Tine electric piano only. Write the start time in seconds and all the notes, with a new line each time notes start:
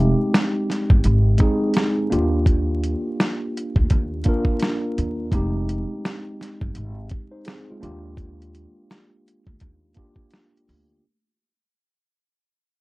Already playing: G#3 C4 D#4 G4
1.38 G#3 C4 D#4 G#4
2.10 A#3 D4 F4 G4
4.25 A#3 D4 F4 A#4
5.31 G#3 C4 D#4 G4
7.32 D#4 C5
7.46 C4 G#4
7.70 G#3 F4
7.81 A#3 D4 F4 G4
9.95 A#3 D4 F4 G4